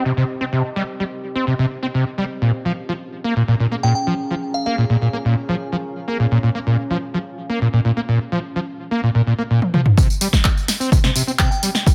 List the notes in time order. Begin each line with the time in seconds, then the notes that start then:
Already playing: C4 G4 D#5 A#5
0.05 C3
0.17 C3
0.41 C4
0.53 C3
0.76 G3
1.00 G3
1.35 C4
1.47 C3
1.59 C3
1.83 C4
1.94 C3
2.18 G3
2.42 A#2 C#4
2.47 G#4
2.58 A#5
2.65 F3
2.89 F3
2.95 F5
3.24 A#3
3.36 A#2
3.48 A#2
3.60 A#2
3.72 A#3
3.83 A#2 G5
3.95 G5
4.07 F3
4.31 F3
4.54 F5
4.66 A#3 F5
4.78 A#2
4.90 A#2
5.02 A#2
5.13 A#3
5.25 A#2
5.49 F3
5.72 F3
6.08 A#3
6.20 A#2
6.31 A#2
6.43 A#2
6.55 A#3
6.67 A#2
6.90 F3
7.14 F3
7.50 A#3
7.61 A#2
7.73 A#2
7.85 A#2
7.97 A#3
8.08 A#2
8.32 F3
8.56 F3
8.91 A#3
9.03 A#2
9.15 A#2
9.27 A#2
9.39 A#3
9.50 A#2
9.62 high tom
9.74 F3, mid tom
9.86 mid tom
9.98 C3 C4, kick, tambourine
10.10 tambourine
10.19 G3 D#5, open hi-hat, tambourine
10.30 G4, kick, snare, tambourine
10.45 G3, kick, clap, tambourine
10.57 tambourine
10.68 snare, open hi-hat, tambourine
10.80 C4, tambourine
10.92 C3, kick, tambourine
11.04 C3, snare, tambourine
11.16 C3, open hi-hat, tambourine
11.27 C4, tambourine
11.39 C3 G5, kick, clap, tambourine
11.51 G5, tambourine
11.63 G3, open hi-hat, tambourine
11.75 snare, tambourine
11.87 G3, kick, tambourine